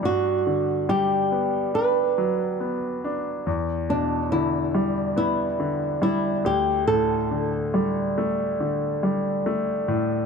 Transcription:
<<
  \new Staff \with { instrumentName = "Nylon-string guitar" } { \time 4/4 \key g \major \tempo 4 = 70 fis'4 g'4 b'4. r8 | r8 d'8 e'4 e'4 e'8 g'8 | a'2. r4 | }
  \new Staff \with { instrumentName = "Grand piano" } { \clef bass \time 4/4 \key g \major g,8 d8 g8 b8 d'8 fis8 b8 d'8 | e,8 b,8 d8 g8 b8 d8 g8 d,8 | a,8 d8 g8 a8 d8 g8 a8 a,8 | }
>>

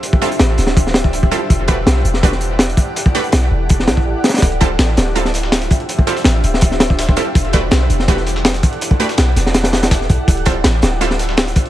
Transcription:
<<
  \new Staff \with { instrumentName = "Synth stab" } { \time 4/4 \key d \dorian \tempo 4 = 164 r8 <g c' e' f' a'>8 r2 r8 <g c' e' f' a'>8 | r8 <a d' fis' g' b'>8 r4 <a d' fis' g' b'>8 r4. | r8 <a d' fis' g' b'>8 r2. | r8 <g c' e' f' a'>8 r4 <g c' e' f' a'>8 r4. |
r8 <g c' e' f' a'>8 r2 r8 <g c' e' f' a'>8 | r8 <a d' fis' g' b'>8 r4 <a d' fis' g' b'>8 r4. | r8 <a d' fis' g' b'>8 r2. | r8 <g c' e' f' a'>8 r4 <g c' e' f' a'>8 r4. | }
  \new Staff \with { instrumentName = "808-style bass" } { \clef bass \time 4/4 \key d \dorian r4 a,,8 d,,2 r8 | e,,4 b,,8 e,,2 r8 | r4 b,,8 e,,4 b,,8 a,,8 r8 | d,,4 a,,8 d,,2 r8 |
r4 a,,8 d,,2 r8 | e,,4 b,,8 e,,2 r8 | r4 b,,8 e,,2 b,,8 | d,,4 a,,8 d,,2 r8 | }
  \new DrumStaff \with { instrumentName = "Drums" } \drummode { \time 4/4 hh16 bd16 hh16 hh16 <hh sn>8 <hh sn>16 sn16 <hh bd>16 sn16 <hh sn>16 bd16 hh16 bd16 hh8 | <hh bd>8 <hh bd>8 <hh sn>8 hh16 sn16 <hh bd>16 sn16 hh8 <hh sn>16 hh16 <hh bd>8 | hh16 bd16 hh16 hh16 <hh sn>4 <hh bd>16 sn16 <hh sn>16 bd16 r8 <hh sn>32 <hh sn>32 <hh sn>32 <hh sn>32 | <hh bd>16 hh16 <hh bd>8 <hh sn>8 <hh sn>8 hh16 sn16 <hh sn>16 sn16 <hh sn>16 <hh sn>16 <hh bd>16 hh16 |
hh16 bd16 <hh sn>16 <hh sn>16 <hh sn>8 hh16 sn16 <hh bd>16 sn16 <hh hho sn>16 bd16 <hh sn>16 bd16 hh8 | <hh bd>16 hh16 <hh bd>8 <hh sn>8 hh16 sn16 <hh bd>16 sn16 <hh sn>16 sn16 <hh sn>16 <hh sn>16 <hh bd>16 hh16 | hh16 bd16 <hh sn>16 <hh sn>16 <hh sn>8 <hh sn>16 sn16 <hh sn>16 <hh sn>16 <hh hho sn>16 <hh sn>16 <hh bd sn>16 sn16 <hh bd>8 | <hh bd>16 hh16 <hh bd>8 <hh sn>8 <hh sn>8 hh16 sn16 <hh sn>16 sn16 <hh sn>16 <hh sn>16 <hh bd>16 hh16 | }
>>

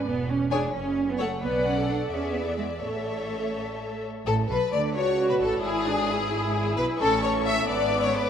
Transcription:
<<
  \new Staff \with { instrumentName = "Violin section" } { \time 6/8 \key a \major \tempo 4. = 87 r4 gis''16 r4 r16 fis''16 r16 | fis''4. e''4. | e''2~ e''8 r8 | a'8 b'8 d''8 cis''8. b'16 a'8 |
gis'2~ gis'8 b'8 | cis'''4. d'''4. | }
  \new Staff \with { instrumentName = "Violin section" } { \time 6/8 \key a \major r4 cis''16 r4 r16 cis''16 r16 | d''4. d''4. | cis''2~ cis''8 r8 | a'8 b'8 d''8 cis''8. b'16 a'8 |
gis'2~ gis'8 b'8 | a'8 cis''8 e''8 d''8. cis''16 b'8 | }
  \new Staff \with { instrumentName = "Viola section" } { \time 6/8 \key a \major r4 gis'16 r4 r16 a'16 r16 | b'8. a'8. gis'4. | a'2~ a'8 r8 | r4. fis'4. |
e'8 d'8 e'2 | cis'4. b4. | }
  \new Staff \with { instrumentName = "Cello section" } { \time 6/8 \key a \major b8 cis'8 d'8 cis'8. b16 a8 | b8 cis'8 d'8 cis'8 b8 gis8 | a2~ a8 r8 | a,8 b,8 d8 cis8. b,16 a,8 |
gis,2~ gis,8 b,8 | a,4. gis,4. | }
  \new Staff \with { instrumentName = "Double bass section" } { \clef bass \time 6/8 \key a \major e,,4. fis,,4. | b,,4. e,4. | a,,2~ a,,8 r8 | a,,8 b,,8 d,8 cis,8. r16 a,,8 |
gis,,2~ gis,,8 b,,8 | a,,4. gis,,4. | }
>>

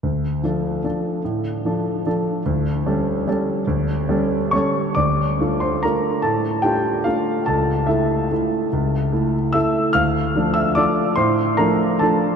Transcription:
<<
  \new Staff \with { instrumentName = "Grand piano" } { \time 3/4 \key d \minor \tempo 4 = 146 r2. | r2. | r2. | r2 <cis'' cis'''>4 |
<d'' d'''>4. <c'' c'''>8 <bes' bes''>4 | <a' a''>4 <g' g''>4 <f' f''>4 | <a' a''>4 <e' e''>2~ | <e' e''>4. r8 <e'' e'''>4 |
<f'' f'''>4. <e'' e'''>8 <d'' d'''>4 | <c'' c'''>4 <bes' bes''>4 <a' a''>4 | }
  \new Staff \with { instrumentName = "Grand piano" } { \time 3/4 \key d \minor d,4 <f d' a'>4 <f d' a'>4 | a,4 <f d' a'>4 <f d' a'>4 | d,4 <g cis' a'>4 <g cis' a'>4 | d,4 <g cis' a'>4 <g cis' a'>4 |
d,4 <a d' f'>4 <a d' f'>4 | a,4 <a d' f'>4 <a d'>4 | cis,4 a4 <a e'>4 | cis,4 <a e'>4 <a e'>4 |
d,4 <f a d'>4 <f a d'>4 | a,4 <f a d'>4 <f a d'>4 | }
>>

